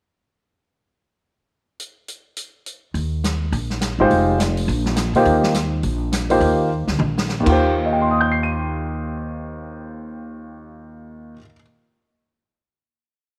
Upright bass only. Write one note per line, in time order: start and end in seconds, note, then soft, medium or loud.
2.94 3.50 D#2 medium
3.52 3.96 A#1 medium
3.99 4.09 G1 medium
4.10 4.65 F1 medium
4.68 5.12 A#1 medium
5.13 5.25 A#2 medium
5.25 5.81 D#2 medium
5.83 6.39 A#1 medium
6.40 6.84 D#2 medium
6.87 6.98 D2 medium
6.99 7.43 A#1 medium
7.46 11.33 D#2 medium